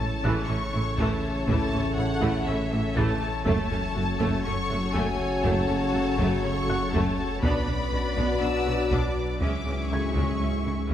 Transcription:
Already playing: sub bass A1, trombone section C#3 A3, ambient pad E3 C#4 A4 C#5, french horn section C#4 E4, violin section A4 C#5 A5
0.24 double bass section A1, cello section A2, viola section E3 A3, felt piano F#6, taiko
0.48 double bass section A1, cello section A2, viola section E3 C#4, violin section C#6
0.73 double bass section A1, cello section A2, viola section E3 E4
0.97 double bass section A1, cello section A2, viola section E3 A3, violin section A5, taiko
1.48 double bass section A1, cello section A2, viola section E3 A3, violin section A5, taiko
1.72 double bass section A1, cello section A2, viola section E3 C#4
1.97 double bass section A1, cello section A2, viola section E3 E4, violin section F#5
2.21 double bass section A1, cello section A2, viola section E3 A3, taiko
2.47 double bass section A1, cello section A2, viola section E3 C#4, violin section E5
2.71 double bass section A1, cello section A2, viola section E3 E4
2.96 double bass section A1, cello section A2, viola section E3 A3, violin section A5, felt piano A6, taiko
3.45 sub bass F#1, double bass section F#1, cello section F#2, trombone section C#3 F#3, ambient pad F#3 C#4 F#4 C#5, viola section A3, french horn section C#4 F#4, violin section A4 C#5 A5, taiko
3.70 double bass section F#1, cello section F#2, viola section A3 C#4
3.95 double bass section F#1, cello section F#2, viola section A3 F#4
4.20 double bass section F#1, cello section F#2, viola section A3, taiko
4.45 double bass section F#1, cello section F#2, viola section A3 C#4, violin section C#6
4.70 double bass section F#1, cello section F#2, viola section A3 F#4
4.94 double bass section F#1, cello section F#2, viola section A3, violin section G#5, taiko
5.44 double bass section F#1, cello section F#2, viola section A3, violin section A5, taiko
5.68 double bass section F#1, cello section F#2, viola section A3 C#4
5.93 double bass section F#1, cello section F#2, viola section A3 F#4
6.18 double bass section F#1, cello section F#2, viola section A3, taiko
6.43 double bass section F#1, cello section F#2, viola section A3 C#4, violin section C#6
6.68 double bass section F#1, cello section F#2, viola section A3 F#4, felt piano F#5 F#6
6.93 double bass section F#1, cello section F#2, viola section A3, violin section A5, taiko
7.42 double bass section B1, sub bass B1, cello section B2, trombone section B2 F#3, viola section B3 D4, french horn section D4 F#4, ambient pad D4 B4, violin section B4 D5 B5, taiko
7.67 double bass section B1, cello section B2, viola section D4
7.92 double bass section B1, cello section B2, viola section D4 F#4
8.17 double bass section B1, cello section B2, viola section B3 D4, taiko
8.42 double bass section B1, cello section B2, viola section D4, violin section E6
8.66 double bass section B1, cello section B2, viola section D4 F#4
8.91 double bass section B1, cello section B2, viola section B3 D4, violin section D6, taiko
9.41 double bass section C#2, sub bass C#2, trombone section G#2 G#3, cello section C#3, ambient pad G#3 C#4 E4 G#4, viola section G#3 C#4, french horn section C#4 E4, violin section G#4 E5 D6, taiko
9.65 double bass section C#2, cello section C#3, viola section C#4
9.90 double bass section C#2, cello section C#3, viola section C#4 E4, felt piano G#5 G#6, violin section C#6
10.15 double bass section C#2, cello section C#3, viola section G#3 C#4, taiko
10.40 double bass section C#2, cello section C#3, viola section C#4
10.65 double bass section C#2, cello section C#3, viola section C#4 E4
10.90 double bass section C#2, cello section C#3, viola section G#3 C#4, taiko

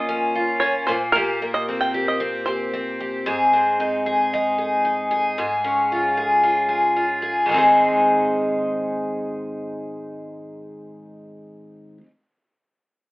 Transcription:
Already playing: twelve-string acoustic guitar A#2 A#3 F4, five-string banjo D#5
0.09 twelve-string acoustic guitar C#4
0.35 twelve-string acoustic guitar F4
0.60 twelve-string acoustic guitar C#4, five-string banjo C#5
0.87 twelve-string acoustic guitar A#2, five-string banjo C5
1.12 twelve-string acoustic guitar A#2 G4, five-string banjo A#4
1.42 twelve-string acoustic guitar A#3
1.54 five-string banjo D#5
1.69 twelve-string acoustic guitar C4
1.81 five-string banjo G5
1.94 twelve-string acoustic guitar G4
2.08 five-string banjo D#5
2.20 twelve-string acoustic guitar C4
2.46 twelve-string acoustic guitar G4, five-string banjo C5
2.74 twelve-string acoustic guitar C4
3.00 twelve-string acoustic guitar G4
3.26 twelve-string acoustic guitar G#2 G#4
3.53 twelve-string acoustic guitar C4
3.80 twelve-string acoustic guitar D#4
4.06 twelve-string acoustic guitar G#4
4.33 twelve-string acoustic guitar D#4
4.58 twelve-string acoustic guitar G#4
4.85 twelve-string acoustic guitar D#4
5.11 twelve-string acoustic guitar G#4
5.38 twelve-string acoustic guitar G#2 G#4
5.64 twelve-string acoustic guitar C#4
5.92 twelve-string acoustic guitar F4
6.17 twelve-string acoustic guitar G#4
6.43 twelve-string acoustic guitar F4
6.69 twelve-string acoustic guitar G#4
6.96 twelve-string acoustic guitar F4
7.22 twelve-string acoustic guitar G#4
7.46 twelve-string acoustic guitar G#2 D#3
7.52 twelve-string acoustic guitar G#3 C4
7.56 twelve-string acoustic guitar D#4 G#4

